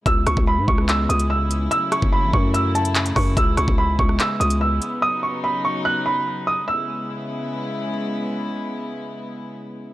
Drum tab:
HH |x-x-----x-xx--x-|x-x-----x-xxxxo-|x-x-----x-xx--x-|----------------|
CP |--------x-------|------------x---|--------x-------|----------------|
SD |--r----r--------|--r-----------r-|--r----r--------|----------------|
BD |o--o--o---------|---o--o-------o-|o--o--o---------|----------------|

HH |----------------|----------------|
CP |----------------|----------------|
SD |----------------|----------------|
BD |----------------|----------------|